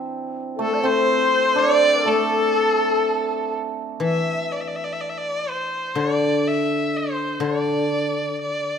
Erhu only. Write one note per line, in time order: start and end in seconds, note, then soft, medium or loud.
0.62 0.87 A4 medium
0.85 1.60 C5 loud
1.59 2.08 D5 loud
2.07 3.55 A4 loud
4.05 4.53 E5 medium
4.52 4.62 D5 medium
4.61 4.69 E5 medium
4.68 4.77 D5 medium
4.76 4.86 E5 medium
4.84 4.94 D5 medium
4.92 5.02 E5 medium
5.01 5.11 D5 medium
5.09 5.19 E5 medium
5.18 5.51 D5 medium
5.50 6.00 C5 medium
5.99 6.49 D5 medium
6.48 6.98 E5 medium
6.97 7.45 C5 medium
7.44 8.40 D5 medium
8.41 8.79 D5 medium